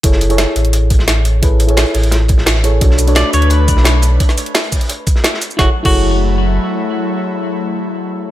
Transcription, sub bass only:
\new Staff \with { instrumentName = "Sub bass" } { \clef bass \time 4/4 \key fis \minor \tempo 4 = 173 fis,,4~ fis,,16 r16 a,,2~ a,,8~ | a,,4~ a,,16 r16 a,,2~ a,,8 | b,,4~ b,,16 r16 d,4~ d,16 b,,4~ b,,16 | r1 |
fis,,16 r8 fis,,2~ fis,,16 r4 | r1 | }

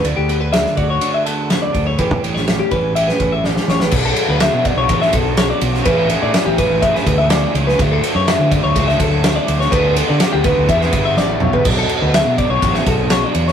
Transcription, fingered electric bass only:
\new Staff \with { instrumentName = "Fingered electric bass" } { \clef bass \time 4/4 \key b \minor \tempo 4 = 124 d,16 d,4~ d,16 d,8 r4. d,8 | a,,16 e,16 a,,4 a,,4 a,,4 a,,8 | b,,8 r16 d,8 b,8 b,,16 a,,8 b,,4 b,,8 | a,,8. a,16 r16 a,,8 a,,8 r16 d,4 cis,8 |
d,8 r16 fis,8 d8 d,16 cis,8 d,4 d,8 | d,8. d16 r16 d,8 d,16 e,8 g,,8 a,,8 b,,8 | b,,8 r16 d,8 b,8 b,,16 a,,8 b,,4 e,8 | }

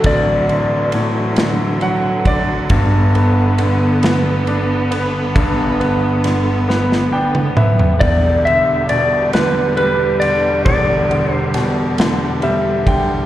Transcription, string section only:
\new Staff \with { instrumentName = "String section" } { \clef bass \time 6/8 \key g \major \tempo 4. = 45 <d e fis>2. | <g, b>2.~ | <g, b>2. | <e, d g>2.~ |
<e, d g>2. | }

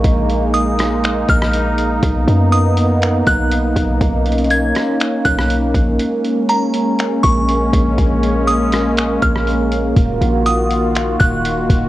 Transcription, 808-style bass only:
\new Staff \with { instrumentName = "808-style bass" } { \clef bass \time 4/4 \key bes \phrygian \tempo 4 = 121 bes,,2~ bes,,8 bes,,4. | b,,8 fis,2 b,,4 b,,8 | b,,4. r4 b,,4 ais,,8 | r2 r8 bes,,4 bes,,8 |
bes,,2~ bes,,8 bes,,4. | ees,,8 bes,,2 ees,,4 ees,,8 | }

